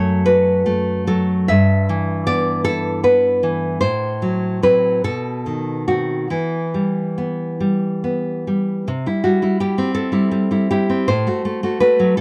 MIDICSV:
0, 0, Header, 1, 2, 480
1, 0, Start_track
1, 0, Key_signature, 1, "minor"
1, 0, Tempo, 780234
1, 401, Tempo, 847458
1, 881, Time_signature, 6, 3, 24, 8
1, 881, Tempo, 774194
1, 2321, Tempo, 818554
1, 2801, Tempo, 847458
1, 5201, Tempo, 734394
1, 7378, End_track
2, 0, Start_track
2, 0, Title_t, "Nylon-string guitar"
2, 0, Program_c, 0, 24
2, 0, Note_on_c, 0, 42, 47
2, 0, Note_on_c, 0, 54, 35
2, 0, Note_on_c, 0, 57, 42
2, 0, Note_on_c, 0, 73, 69
2, 146, Note_off_c, 0, 73, 0
2, 158, Note_on_c, 0, 71, 66
2, 160, Note_on_c, 0, 66, 42
2, 398, Note_off_c, 0, 57, 0
2, 400, Note_off_c, 0, 54, 0
2, 405, Note_on_c, 0, 57, 41
2, 624, Note_off_c, 0, 71, 0
2, 640, Note_on_c, 0, 54, 37
2, 640, Note_on_c, 0, 69, 60
2, 858, Note_off_c, 0, 42, 0
2, 870, Note_off_c, 0, 69, 0
2, 872, Note_on_c, 0, 76, 68
2, 878, Note_on_c, 0, 43, 50
2, 880, Note_off_c, 0, 54, 0
2, 883, Note_off_c, 0, 66, 0
2, 884, Note_off_c, 0, 57, 0
2, 1125, Note_on_c, 0, 52, 37
2, 1337, Note_off_c, 0, 76, 0
2, 1357, Note_on_c, 0, 74, 74
2, 1361, Note_on_c, 0, 59, 38
2, 1587, Note_off_c, 0, 74, 0
2, 1591, Note_on_c, 0, 69, 78
2, 1596, Note_on_c, 0, 64, 44
2, 1824, Note_off_c, 0, 69, 0
2, 1827, Note_off_c, 0, 59, 0
2, 1833, Note_on_c, 0, 59, 31
2, 1836, Note_on_c, 0, 71, 54
2, 1837, Note_off_c, 0, 52, 0
2, 2079, Note_on_c, 0, 52, 34
2, 2296, Note_off_c, 0, 43, 0
2, 2301, Note_off_c, 0, 71, 0
2, 2311, Note_on_c, 0, 72, 65
2, 2316, Note_off_c, 0, 52, 0
2, 2318, Note_on_c, 0, 45, 48
2, 2321, Note_off_c, 0, 59, 0
2, 2321, Note_off_c, 0, 64, 0
2, 2555, Note_on_c, 0, 54, 36
2, 2778, Note_off_c, 0, 72, 0
2, 2786, Note_off_c, 0, 54, 0
2, 2793, Note_on_c, 0, 54, 32
2, 2797, Note_on_c, 0, 71, 60
2, 2798, Note_on_c, 0, 60, 34
2, 3011, Note_off_c, 0, 54, 0
2, 3013, Note_off_c, 0, 60, 0
2, 3015, Note_off_c, 0, 45, 0
2, 3024, Note_off_c, 0, 71, 0
2, 3028, Note_on_c, 0, 47, 42
2, 3029, Note_on_c, 0, 69, 67
2, 3266, Note_on_c, 0, 51, 28
2, 3487, Note_off_c, 0, 69, 0
2, 3495, Note_off_c, 0, 51, 0
2, 3501, Note_on_c, 0, 66, 49
2, 3502, Note_on_c, 0, 51, 27
2, 3504, Note_on_c, 0, 60, 27
2, 3725, Note_off_c, 0, 51, 0
2, 3726, Note_off_c, 0, 47, 0
2, 3726, Note_off_c, 0, 60, 0
2, 3737, Note_off_c, 0, 66, 0
2, 3742, Note_on_c, 0, 64, 43
2, 3745, Note_on_c, 0, 52, 36
2, 3992, Note_on_c, 0, 55, 28
2, 4238, Note_on_c, 0, 59, 32
2, 4458, Note_off_c, 0, 64, 0
2, 4473, Note_off_c, 0, 55, 0
2, 4480, Note_on_c, 0, 55, 31
2, 4719, Note_off_c, 0, 59, 0
2, 4726, Note_on_c, 0, 59, 26
2, 4965, Note_off_c, 0, 55, 0
2, 4972, Note_on_c, 0, 55, 27
2, 5178, Note_off_c, 0, 52, 0
2, 5200, Note_on_c, 0, 48, 40
2, 5202, Note_off_c, 0, 55, 0
2, 5203, Note_off_c, 0, 59, 0
2, 5318, Note_off_c, 0, 48, 0
2, 5323, Note_on_c, 0, 55, 29
2, 5326, Note_on_c, 0, 64, 33
2, 5433, Note_off_c, 0, 55, 0
2, 5436, Note_on_c, 0, 66, 51
2, 5441, Note_on_c, 0, 55, 31
2, 5550, Note_off_c, 0, 55, 0
2, 5550, Note_off_c, 0, 64, 0
2, 5556, Note_on_c, 0, 55, 33
2, 5560, Note_on_c, 0, 64, 32
2, 5663, Note_off_c, 0, 66, 0
2, 5670, Note_off_c, 0, 55, 0
2, 5671, Note_off_c, 0, 64, 0
2, 5675, Note_on_c, 0, 67, 47
2, 5677, Note_on_c, 0, 55, 30
2, 5680, Note_on_c, 0, 64, 36
2, 5791, Note_on_c, 0, 60, 38
2, 5896, Note_off_c, 0, 67, 0
2, 5899, Note_on_c, 0, 69, 63
2, 6005, Note_off_c, 0, 55, 0
2, 6007, Note_off_c, 0, 64, 0
2, 6012, Note_on_c, 0, 55, 31
2, 6017, Note_on_c, 0, 64, 30
2, 6132, Note_off_c, 0, 55, 0
2, 6140, Note_on_c, 0, 55, 35
2, 6258, Note_off_c, 0, 55, 0
2, 6263, Note_off_c, 0, 64, 0
2, 6266, Note_on_c, 0, 55, 27
2, 6271, Note_on_c, 0, 64, 29
2, 6377, Note_off_c, 0, 69, 0
2, 6389, Note_off_c, 0, 55, 0
2, 6393, Note_off_c, 0, 64, 0
2, 6396, Note_on_c, 0, 55, 30
2, 6396, Note_on_c, 0, 67, 55
2, 6401, Note_on_c, 0, 64, 37
2, 6512, Note_off_c, 0, 60, 0
2, 6520, Note_on_c, 0, 60, 36
2, 6624, Note_off_c, 0, 55, 0
2, 6626, Note_off_c, 0, 64, 0
2, 6638, Note_off_c, 0, 67, 0
2, 6639, Note_on_c, 0, 72, 66
2, 6644, Note_on_c, 0, 45, 42
2, 6647, Note_off_c, 0, 60, 0
2, 6763, Note_on_c, 0, 57, 31
2, 6764, Note_off_c, 0, 45, 0
2, 6768, Note_on_c, 0, 66, 31
2, 6874, Note_off_c, 0, 57, 0
2, 6882, Note_on_c, 0, 57, 30
2, 6992, Note_off_c, 0, 57, 0
2, 6997, Note_off_c, 0, 66, 0
2, 7000, Note_on_c, 0, 57, 32
2, 7005, Note_on_c, 0, 66, 33
2, 7101, Note_off_c, 0, 72, 0
2, 7109, Note_off_c, 0, 57, 0
2, 7113, Note_on_c, 0, 71, 61
2, 7114, Note_off_c, 0, 66, 0
2, 7117, Note_on_c, 0, 57, 34
2, 7121, Note_on_c, 0, 66, 36
2, 7238, Note_on_c, 0, 54, 40
2, 7334, Note_off_c, 0, 57, 0
2, 7337, Note_off_c, 0, 66, 0
2, 7347, Note_off_c, 0, 71, 0
2, 7353, Note_on_c, 0, 69, 61
2, 7355, Note_off_c, 0, 54, 0
2, 7357, Note_on_c, 0, 45, 49
2, 7378, Note_off_c, 0, 45, 0
2, 7378, Note_off_c, 0, 69, 0
2, 7378, End_track
0, 0, End_of_file